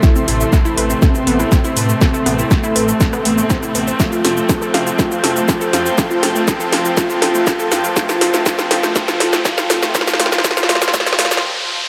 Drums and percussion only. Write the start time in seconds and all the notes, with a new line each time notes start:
0.03 kick, snare, shaker
0.16 shaker
0.28 open hi-hat, shaker
0.41 shaker
0.53 kick, cross-stick, snare, shaker
0.65 shaker
0.78 open hi-hat
0.90 shaker
1.02 kick, snare, shaker
1.15 shaker
1.27 open hi-hat
1.40 cross-stick, shaker
1.52 kick, snare, shaker
1.64 shaker
1.77 open hi-hat, shaker
1.89 shaker
2.01 kick, snare, shaker
2.14 shaker
2.26 cross-stick, open hi-hat, shaker
2.39 shaker
2.51 kick, snare, shaker
2.64 shaker
2.76 open hi-hat, shaker
2.88 shaker
3.01 kick, snare, shaker
3.13 cross-stick, shaker
3.25 open hi-hat
3.38 shaker
3.50 kick, snare, shaker
3.63 shaker
3.75 open hi-hat, shaker
3.88 shaker
4.00 kick, snare, shaker
4.12 shaker
4.25 snare, open hi-hat, shaker
4.37 shaker
4.49 kick, snare, shaker
4.62 shaker
4.74 snare, open hi-hat
4.87 shaker
4.99 kick, snare, shaker
5.12 shaker
5.24 snare, open hi-hat
5.36 shaker
5.48 kick, snare, shaker
5.61 shaker
5.73 snare, open hi-hat, shaker
5.86 shaker
5.98 kick, snare, shaker
6.11 shaker
6.23 snare, open hi-hat, shaker
6.36 shaker
6.48 kick, snare, shaker
6.60 shaker
6.73 snare, open hi-hat
6.85 shaker
6.97 kick, snare, shaker
7.10 shaker
7.22 snare, open hi-hat
7.35 shaker
7.47 kick, snare, shaker
7.59 shaker
7.72 snare, open hi-hat, shaker
7.84 shaker
7.96 kick, snare, shaker
8.09 snare, shaker
8.21 snare, open hi-hat, shaker
8.34 snare, shaker
8.46 kick, snare, shaker
8.59 snare, shaker
8.71 snare, open hi-hat
8.83 snare, shaker
8.96 kick, snare, shaker
9.08 snare, shaker
9.20 snare, open hi-hat
9.33 snare, shaker
9.45 kick, snare, shaker
9.58 snare, shaker
9.70 snare, open hi-hat, shaker
9.82 snare, shaker
9.95 kick, snare, shaker
10.01 snare
10.07 snare, shaker
10.13 snare
10.20 snare, open hi-hat, shaker
10.26 snare
10.32 snare, shaker
10.38 snare
10.44 kick, snare, shaker
10.51 snare
10.57 snare, shaker
10.63 snare
10.69 snare, open hi-hat, shaker
10.75 snare
10.82 snare, shaker
10.88 snare
10.94 kick, snare, shaker
11.00 snare
11.06 snare, open hi-hat, shaker
11.13 snare
11.19 snare, open hi-hat, shaker
11.25 snare
11.31 snare, shaker
11.37 snare